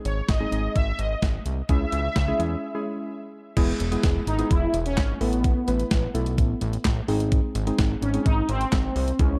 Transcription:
0.00 0.24 G#3 medium
0.00 0.24 C4 medium
0.00 0.24 D#4 medium
0.00 0.24 G#4 loud
0.05 0.22 G#1 loud
0.05 0.29 C#5 medium
0.05 closed hi-hat medium
0.28 0.45 G#1 loud
0.28 0.77 D#5 loud
0.28 kick loud
0.28 snare loud
0.28 closed hi-hat medium
0.40 0.49 G#3 medium
0.40 0.49 C4 medium
0.40 0.49 D#4 medium
0.40 0.49 G#4 medium
0.52 0.68 G#1 medium
0.52 1.23 G#3 medium
0.52 1.23 C4 medium
0.52 1.23 D#4 medium
0.52 1.23 G#4 medium
0.52 closed hi-hat medium
0.75 0.92 G#1 loud
0.75 1.00 E5 loud
0.75 kick loud
0.75 closed hi-hat medium
0.99 1.15 G#1 loud
0.99 1.42 D#5 loud
0.99 closed hi-hat medium
1.22 1.39 G#1 medium
1.22 kick loud
1.22 snare loud
1.22 closed hi-hat medium
1.46 1.62 C2 medium
1.46 closed hi-hat medium
1.69 1.86 C#2 loud
1.69 2.14 G#3 medium
1.69 2.14 C#4 medium
1.69 2.14 E4 medium
1.69 2.14 G#4 medium
1.69 3.06 E5 loud
1.69 kick loud
1.69 closed hi-hat medium
1.92 2.09 C#2 loud
1.92 closed hi-hat medium
2.16 2.33 C#2 loud
2.16 kick loud
2.16 snare loud
2.16 closed hi-hat medium
2.28 2.37 G#3 medium
2.28 2.37 C#4 medium
2.28 2.37 E4 medium
2.28 2.37 G#4 loud
2.39 2.56 E2 medium
2.39 2.66 G#3 medium
2.39 2.66 C#4 medium
2.39 2.66 E4 medium
2.39 2.66 G#4 loud
2.39 closed hi-hat medium
2.75 3.37 G#3 medium
2.75 3.37 C#4 medium
2.75 3.37 E4 medium
2.75 3.37 G#4 loud
3.57 3.73 E1 loud
3.57 3.83 G#3 medium
3.57 3.83 B3 medium
3.57 3.83 E4 medium
3.57 3.83 G#4 loud
3.57 kick loud
3.57 closed hi-hat medium
3.57 crash loud
3.80 3.97 E1 loud
3.80 closed hi-hat medium
3.92 4.27 G#3 medium
3.92 4.27 B3 medium
3.92 4.27 E4 medium
3.92 4.27 G#4 loud
3.92 closed hi-hat medium
4.03 4.20 E1 loud
4.03 kick loud
4.03 snare loud
4.03 closed hi-hat medium
4.27 4.43 G#1 loud
4.27 4.49 D#4 loud
4.27 closed hi-hat medium
4.39 5.10 G#3 medium
4.39 5.10 B3 medium
4.39 5.10 E4 medium
4.39 5.10 G#4 medium
4.39 closed hi-hat medium
4.51 4.67 E1 loud
4.51 4.87 E4 loud
4.51 kick loud
4.51 closed hi-hat medium
4.74 4.99 E1 loud
4.74 closed hi-hat medium
4.86 5.19 C#4 loud
4.86 closed hi-hat medium
4.97 5.14 G#1 loud
4.97 kick loud
4.97 snare loud
4.97 clap medium
4.97 closed hi-hat medium
5.21 5.54 A1 loud
5.21 5.58 A3 medium
5.21 5.58 B3 medium
5.21 7.04 B3 loud
5.21 5.58 E4 medium
5.21 5.58 A4 medium
5.21 open hi-hat medium
5.33 closed hi-hat medium
5.44 kick loud
5.44 closed hi-hat medium
5.68 5.84 A1 loud
5.68 6.03 A3 medium
5.68 6.03 B3 medium
5.68 6.03 E4 medium
5.68 6.03 B4 medium
5.68 closed hi-hat medium
5.80 closed hi-hat medium
5.91 6.08 A1 loud
5.91 kick loud
5.91 snare loud
5.91 closed hi-hat medium
6.14 6.40 B1 medium
6.14 6.86 A3 medium
6.14 6.86 B3 medium
6.14 6.86 E4 medium
6.14 6.86 A4 loud
6.14 closed hi-hat medium
6.26 closed hi-hat medium
6.38 6.55 A1 loud
6.38 kick loud
6.38 closed hi-hat medium
6.61 6.78 A1 loud
6.61 closed hi-hat medium
6.73 closed hi-hat medium
6.85 7.01 A1 loud
6.85 kick loud
6.85 snare loud
6.85 clap medium
6.85 closed hi-hat medium
7.08 7.41 G#1 loud
7.08 7.55 G#3 loud
7.08 7.55 C4 medium
7.08 7.55 D#4 medium
7.08 7.55 G#4 loud
7.08 open hi-hat medium
7.20 closed hi-hat medium
7.32 kick loud
7.32 closed hi-hat medium
7.55 7.72 G#1 loud
7.55 closed hi-hat medium
7.67 8.03 G#3 medium
7.67 8.03 C4 medium
7.67 8.03 D#4 medium
7.67 8.03 G#4 loud
7.67 closed hi-hat medium
7.79 7.95 G#1 loud
7.79 kick loud
7.79 snare loud
7.79 closed hi-hat medium
8.02 8.18 G#1 loud
8.02 8.26 C#4 loud
8.02 closed hi-hat medium
8.14 8.85 G#3 medium
8.14 8.85 C4 medium
8.14 8.85 D#4 medium
8.14 8.85 G#4 medium
8.14 closed hi-hat medium
8.26 8.42 G#1 loud
8.26 8.50 D#4 loud
8.26 kick loud
8.26 closed hi-hat medium
8.49 8.65 G#1 loud
8.49 8.95 C4 loud
8.49 closed hi-hat medium
8.61 closed hi-hat medium
8.72 8.89 G#1 loud
8.72 kick loud
8.72 snare loud
8.72 clap medium
8.72 closed hi-hat medium
8.96 9.12 C2 loud
8.96 9.18 C4 loud
8.96 open hi-hat medium
9.08 closed hi-hat medium
9.19 9.36 C#2 loud
9.19 9.37 G#3 medium
9.19 9.39 C#4 loud
9.19 9.37 C#4 medium
9.19 9.37 E4 medium
9.19 9.37 G#4 medium
9.19 kick loud
9.19 closed hi-hat medium

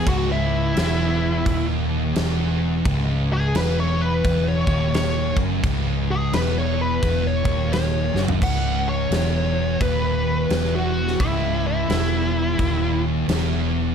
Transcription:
0.07 0.72 C#1 loud
0.07 0.78 C#2 loud
0.07 0.30 F#4 loud
0.07 kick loud
0.07 crash medium
0.32 1.66 E4 medium
0.77 1.42 E1 loud
0.77 1.46 E2 loud
0.77 snare loud
0.77 crash medium
1.46 2.11 D#1 loud
1.46 2.15 D#2 loud
1.46 kick loud
1.46 crash medium
2.16 2.82 E1 medium
2.16 2.85 E2 medium
2.16 snare loud
2.16 crash medium
2.85 3.51 C#1 medium
2.85 3.54 C#2 loud
2.85 kick loud
2.85 crash medium
3.33 3.55 G#4 loud
3.55 4.21 E1 loud
3.55 4.23 E2 loud
3.55 3.78 B4 medium
3.55 snare loud
3.55 crash medium
3.80 4.01 C#5 loud
4.01 4.46 B4 loud
4.25 4.64 E1 loud
4.25 4.66 E2 loud
4.25 kick loud
4.25 crash medium
4.49 4.93 C#5 loud
4.67 5.33 D#1 medium
4.67 5.35 D#2 medium
4.67 kick loud
4.94 5.36 C#5 loud
4.94 snare loud
4.94 crash medium
5.36 5.62 F#1 loud
5.36 5.62 F#2 loud
5.36 kick loud
5.63 6.29 C#1 medium
5.63 6.32 C#2 loud
5.63 kick loud
5.63 crash medium
6.11 6.33 G#4 loud
6.33 6.98 E1 medium
6.33 7.01 E2 loud
6.33 6.56 B4 medium
6.33 snare loud
6.33 crash medium
6.58 6.80 C#5 loud
6.81 7.25 B4 medium
7.02 7.42 E1 loud
7.02 7.43 E2 loud
7.02 kick loud
7.02 crash medium
7.27 7.71 C#5 loud
7.43 8.10 D#1 loud
7.43 8.12 D#2 medium
7.43 kick loud
7.73 8.14 C#5 loud
7.73 snare loud
7.73 crash medium
8.13 8.40 F#1 loud
8.13 8.40 F#2 loud
8.13 snare medium
8.28 floor tom loud
8.41 9.07 C#1 loud
8.41 9.10 C#2 loud
8.41 8.88 F#5 loud
8.41 kick loud
8.41 crash loud
8.89 9.78 C#5 medium
9.10 9.76 E1 medium
9.10 9.80 E2 loud
9.10 snare loud
9.10 crash medium
9.80 10.46 D#1 loud
9.80 10.50 D#2 loud
9.80 10.71 B4 loud
9.80 kick loud
9.80 crash medium
10.50 11.15 E1 medium
10.50 11.19 E2 loud
10.50 snare loud
10.50 crash medium
10.75 11.19 F#4 loud
11.07 snare soft
11.20 11.85 C#1 medium
11.20 11.88 C#2 loud
11.20 11.65 E4 medium
11.20 kick loud
11.20 crash medium
11.67 13.02 E4 loud
11.89 12.55 E1 medium
11.89 12.58 E2 loud
11.89 snare loud
11.89 crash medium
12.59 13.24 D#1 loud
12.59 13.28 D#2 loud
12.59 kick loud
12.59 crash medium
13.28 13.94 E1 medium
13.28 13.95 E2 loud
13.28 snare loud
13.28 crash medium

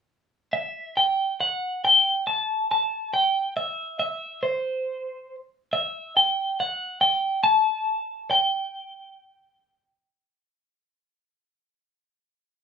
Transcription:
0.53 0.93 E5 soft
0.97 1.37 G5 soft
1.41 1.84 F#5 soft
1.85 2.24 G5 soft
2.27 2.70 A5 soft
2.71 3.13 A5 soft
3.14 3.56 G5 soft
3.57 3.98 E5 soft
4.00 4.43 E5 soft
4.43 5.35 C5 soft
5.73 6.16 E5 soft
6.17 6.60 G5 soft
6.60 7.01 F#5 soft
7.01 7.40 G5 medium
7.44 8.30 A5 medium
8.31 10.41 G5 soft

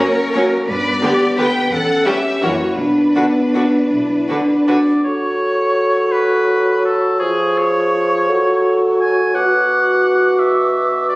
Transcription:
0.00 0.68 A#3 soft
0.00 0.68 C#4 soft
0.00 0.68 A#4 medium
0.00 0.50 C#5 medium
0.34 0.42 F#3 soft
0.34 0.42 A#3 soft
0.34 0.42 C#4 soft
0.34 0.42 C#5 soft
0.67 0.94 G2 medium
0.67 1.70 B3 soft
0.67 1.01 B4 medium
0.67 1.34 D5 medium
1.02 1.10 D3 soft
1.02 1.10 B3 soft
1.02 1.37 G4 medium
1.02 1.10 G4 soft
1.02 1.10 B4 soft
1.37 1.45 D3 soft
1.37 1.46 B3 soft
1.37 1.46 G4 soft
1.37 1.71 B4 medium
1.37 1.46 B4 soft
1.37 1.72 G5 medium
1.71 1.98 E2 medium
1.71 2.42 C#4 soft
1.71 2.06 A4 medium
1.71 2.05 F#5 medium
2.05 2.14 G3 soft
2.05 2.14 C#4 soft
2.05 2.13 G4 soft
2.05 2.42 G4 soft
2.05 2.13 B4 soft
2.05 2.42 E5 medium
2.42 2.70 F#2 soft
2.42 2.50 E3 soft
2.42 2.77 A#3 soft
2.42 2.50 C#4 soft
2.42 2.78 E4 soft
2.42 2.50 F#4 soft
2.42 2.78 F#4 soft
2.42 2.50 A#4 soft
2.42 2.78 C#5 medium
2.77 3.07 B1 soft
2.77 3.11 B3 soft
2.77 3.11 D4 soft
2.77 4.87 D4 soft
2.77 4.63 B4 soft
3.15 3.24 D3 soft
3.15 3.87 B3 soft
3.15 3.24 D4 soft
3.15 3.24 F#4 soft
3.15 3.24 B4 soft
3.54 3.63 D3 soft
3.54 3.63 D4 soft
3.54 3.62 F#4 soft
3.54 3.62 B4 soft
3.91 4.21 B1 soft
3.91 4.29 E4 soft
4.29 4.37 D3 soft
4.29 4.37 D4 soft
4.29 5.05 D4 soft
4.29 4.37 F#4 soft
4.29 4.37 B4 soft
4.67 4.75 D3 soft
4.67 4.75 D4 soft
4.67 4.76 F#4 soft
4.67 4.76 B4 soft
4.67 5.02 D5 soft
5.04 7.16 F#3 soft
5.04 7.16 A4 soft
5.04 6.13 C#5 medium
5.04 7.16 C#6 soft
6.12 6.84 B4 medium
6.85 7.19 A4 medium
7.19 8.31 F3 soft
7.19 7.60 G#4 medium
7.19 8.30 G#4 soft
7.19 9.30 C#6 soft
7.58 8.83 C#5 medium
8.28 9.34 F#3 soft
8.28 9.34 A4 soft
9.00 9.36 G#5 medium
9.34 11.15 B2 soft
9.34 11.15 F#4 soft
9.34 10.41 F#5 medium
9.34 11.15 D6 soft
10.39 11.09 E5 medium
11.09 11.15 D5 medium

